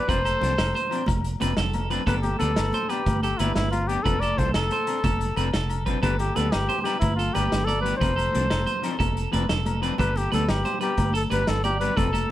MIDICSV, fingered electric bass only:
0, 0, Header, 1, 2, 480
1, 0, Start_track
1, 0, Tempo, 330215
1, 131, Time_signature, 12, 3, 24, 8
1, 17897, End_track
2, 0, Start_track
2, 0, Title_t, "Fingered electric bass"
2, 0, Program_c, 0, 33
2, 128, Note_on_c, 0, 29, 90
2, 518, Note_off_c, 0, 29, 0
2, 612, Note_on_c, 0, 36, 74
2, 806, Note_off_c, 0, 36, 0
2, 860, Note_on_c, 0, 29, 85
2, 1051, Note_off_c, 0, 29, 0
2, 1575, Note_on_c, 0, 29, 84
2, 1962, Note_off_c, 0, 29, 0
2, 2063, Note_on_c, 0, 29, 83
2, 2253, Note_off_c, 0, 29, 0
2, 2294, Note_on_c, 0, 29, 84
2, 2877, Note_off_c, 0, 29, 0
2, 3010, Note_on_c, 0, 31, 92
2, 3400, Note_off_c, 0, 31, 0
2, 3515, Note_on_c, 0, 38, 76
2, 3700, Note_off_c, 0, 38, 0
2, 3746, Note_on_c, 0, 31, 78
2, 3935, Note_off_c, 0, 31, 0
2, 4453, Note_on_c, 0, 31, 79
2, 4842, Note_off_c, 0, 31, 0
2, 4940, Note_on_c, 0, 31, 80
2, 5131, Note_off_c, 0, 31, 0
2, 5180, Note_on_c, 0, 31, 91
2, 5761, Note_off_c, 0, 31, 0
2, 5906, Note_on_c, 0, 29, 93
2, 6290, Note_off_c, 0, 29, 0
2, 6378, Note_on_c, 0, 36, 73
2, 6571, Note_off_c, 0, 36, 0
2, 6624, Note_on_c, 0, 29, 82
2, 6814, Note_off_c, 0, 29, 0
2, 7331, Note_on_c, 0, 29, 82
2, 7721, Note_off_c, 0, 29, 0
2, 7806, Note_on_c, 0, 29, 85
2, 8003, Note_off_c, 0, 29, 0
2, 8063, Note_on_c, 0, 29, 83
2, 8643, Note_off_c, 0, 29, 0
2, 8773, Note_on_c, 0, 31, 101
2, 9162, Note_off_c, 0, 31, 0
2, 9261, Note_on_c, 0, 38, 78
2, 9452, Note_off_c, 0, 38, 0
2, 9514, Note_on_c, 0, 31, 78
2, 9700, Note_off_c, 0, 31, 0
2, 10204, Note_on_c, 0, 31, 92
2, 10596, Note_off_c, 0, 31, 0
2, 10704, Note_on_c, 0, 31, 83
2, 10893, Note_off_c, 0, 31, 0
2, 10939, Note_on_c, 0, 31, 87
2, 11520, Note_off_c, 0, 31, 0
2, 11655, Note_on_c, 0, 29, 105
2, 12042, Note_off_c, 0, 29, 0
2, 12143, Note_on_c, 0, 36, 71
2, 12332, Note_off_c, 0, 36, 0
2, 12378, Note_on_c, 0, 29, 87
2, 12570, Note_off_c, 0, 29, 0
2, 13081, Note_on_c, 0, 29, 88
2, 13474, Note_off_c, 0, 29, 0
2, 13576, Note_on_c, 0, 29, 87
2, 13768, Note_off_c, 0, 29, 0
2, 13812, Note_on_c, 0, 29, 80
2, 14394, Note_off_c, 0, 29, 0
2, 14533, Note_on_c, 0, 31, 104
2, 14920, Note_off_c, 0, 31, 0
2, 15020, Note_on_c, 0, 38, 74
2, 15210, Note_off_c, 0, 38, 0
2, 15258, Note_on_c, 0, 31, 90
2, 15448, Note_off_c, 0, 31, 0
2, 15960, Note_on_c, 0, 31, 91
2, 16352, Note_off_c, 0, 31, 0
2, 16451, Note_on_c, 0, 31, 84
2, 16644, Note_off_c, 0, 31, 0
2, 16699, Note_on_c, 0, 31, 82
2, 17277, Note_off_c, 0, 31, 0
2, 17414, Note_on_c, 0, 29, 95
2, 17799, Note_off_c, 0, 29, 0
2, 17897, End_track
0, 0, End_of_file